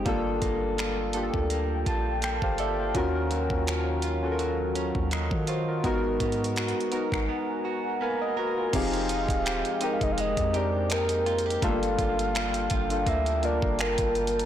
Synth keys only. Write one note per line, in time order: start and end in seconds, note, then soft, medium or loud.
0.05 1.06 A#3 loud
0.05 1.07 D4 medium
0.05 1.07 F4 loud
0.05 1.08 A4 loud
1.14 1.81 A#3 medium
1.14 1.82 D4 medium
1.14 1.82 F4 medium
1.14 1.23 G4 medium
1.23 1.86 A4 medium
1.88 2.21 A5 medium
2.24 2.41 G5 medium
2.43 2.59 G4 medium
2.43 2.58 C5 medium
2.43 2.58 F5 medium
2.60 2.78 A4 medium
2.60 2.78 D5 medium
2.60 2.93 E5 medium
2.79 3.14 C5 medium
2.79 3.13 F5 medium
2.94 4.12 C#4 loud
2.94 4.12 F4 loud
2.94 4.13 F#4 loud
2.94 4.13 A#4 loud
4.22 5.39 C#4 medium
4.22 5.12 F4 medium
4.22 5.13 F#4 medium
4.22 4.30 A4 medium
4.32 5.12 A#4 medium
5.13 5.47 A#4 medium
5.13 5.47 D#5 medium
5.49 5.67 F#4 medium
5.49 5.67 C5 medium
5.68 6.03 F4 medium
5.68 5.85 A#4 medium
5.84 6.84 B3 loud
5.84 6.85 D#4 medium
5.84 6.85 F#4 loud
5.84 6.86 A#4 loud
6.92 7.59 B3 medium
6.92 7.60 D#4 medium
6.92 7.60 F#4 medium
6.92 7.61 A#4 medium
8.02 8.20 B4 soft
8.02 8.20 F5 medium
8.02 8.70 G#5 medium
8.21 8.37 A#4 medium
8.21 8.37 D#5 medium
8.38 8.57 F#4 medium
8.38 8.56 B4 medium
8.58 8.92 F4 medium
8.58 8.91 A#4 medium
8.73 9.74 C4 loud
8.73 9.74 D#4 medium
8.73 9.75 G4 medium
8.73 9.75 G#4 loud
9.81 10.48 C4 medium
9.81 10.49 D#4 medium
9.81 10.49 G4 medium
9.81 10.50 A#4 medium
10.53 11.54 C4 medium
10.53 11.55 D#4 medium
10.53 11.55 G4 medium
10.53 11.56 A#4 medium
11.62 11.69 A3 medium
11.62 12.80 D4 medium
11.62 12.80 F4 medium
11.62 12.81 A4 loud
11.68 12.83 A#3 loud
12.90 13.39 A#3 medium
12.90 13.39 D4 medium
12.90 13.40 F4 medium
12.90 13.40 A4 medium
13.42 14.43 A#3 medium
13.42 14.44 D4 medium
13.42 14.44 F4 medium
13.42 14.45 A#4 medium